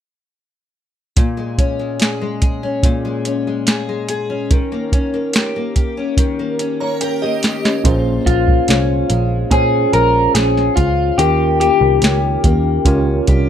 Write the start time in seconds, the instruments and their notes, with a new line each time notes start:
1.17 steel-string acoustic guitar A#2, kick, closed hi-hat
1.37 steel-string acoustic guitar G#3
1.58 steel-string acoustic guitar C#4, kick, closed hi-hat
1.79 steel-string acoustic guitar G#3
2.00 steel-string acoustic guitar G#4, snare, closed hi-hat
2.21 steel-string acoustic guitar G#3
2.42 steel-string acoustic guitar G#4, kick, closed hi-hat
2.63 steel-string acoustic guitar C#4
2.83 steel-string acoustic guitar A#2, kick, closed hi-hat
3.05 steel-string acoustic guitar G#3
3.25 steel-string acoustic guitar C#4, closed hi-hat
3.47 steel-string acoustic guitar G#3
3.67 steel-string acoustic guitar G#4, snare, closed hi-hat
3.89 steel-string acoustic guitar G#3
4.09 steel-string acoustic guitar G#4, closed hi-hat
4.30 steel-string acoustic guitar C#4
4.51 steel-string acoustic guitar D#3, kick, closed hi-hat
4.72 steel-string acoustic guitar A#3
4.92 steel-string acoustic guitar C#4, kick, closed hi-hat
5.14 steel-string acoustic guitar A#3
5.33 steel-string acoustic guitar G4, snare, closed hi-hat
5.56 steel-string acoustic guitar A#3
5.76 steel-string acoustic guitar G4, kick, closed hi-hat
5.97 steel-string acoustic guitar C#4
6.17 steel-string acoustic guitar D#3, kick, closed hi-hat
6.39 steel-string acoustic guitar A#3
6.59 steel-string acoustic guitar C#4, closed hi-hat
6.80 steel-string acoustic guitar A#3, synth bell C#5 A#5
7.01 steel-string acoustic guitar G4, synth bell A#4 G5, closed hi-hat
7.22 steel-string acoustic guitar A#3, synth bell G4 D#5
7.43 steel-string acoustic guitar G4, snare, closed hi-hat
7.64 steel-string acoustic guitar C#4, snare
7.84 picked electric bass A#1, steel-string acoustic guitar A#2 F4, tine electric piano C#4 F4 G#4 C5, kick, closed hi-hat
8.26 picked electric bass A#1, steel-string acoustic guitar G#3, clean electric guitar F4, kick, closed hi-hat
8.48 kick
8.68 picked electric bass C2, steel-string acoustic guitar C#4, snare, closed hi-hat
9.10 picked electric bass A#1, steel-string acoustic guitar G#3, closed hi-hat
9.50 picked electric bass A#2, tine electric piano C#4 F4 G#4 C5, steel-string acoustic guitar C#4, clean electric guitar G#4, kick, closed hi-hat
9.93 picked electric bass A#1, steel-string acoustic guitar F4, clean electric guitar A#4, closed hi-hat
10.35 picked electric bass A#1, steel-string acoustic guitar C#4, clean electric guitar G#4, snare, closed hi-hat
10.57 snare
10.76 picked electric bass C#2, clean electric guitar F4, steel-string acoustic guitar F4, kick, closed hi-hat
11.18 picked electric bass D#2, steel-string acoustic guitar D#3 G4, tine electric piano C#4 F4 G4 A#4, clean electric guitar G4, closed hi-hat
11.60 steel-string acoustic guitar A#3, clean electric guitar G4, closed hi-hat
11.81 picked electric bass C2
12.02 picked electric bass C#2, steel-string acoustic guitar C#4, snare, closed hi-hat
12.44 picked electric bass D#2, steel-string acoustic guitar A#3, kick, closed hi-hat
12.85 picked electric bass C#2, tine electric piano C#4 F4 G4 A#4, steel-string acoustic guitar C#4, kick, closed hi-hat
13.27 picked electric bass C2, steel-string acoustic guitar G4, kick, closed hi-hat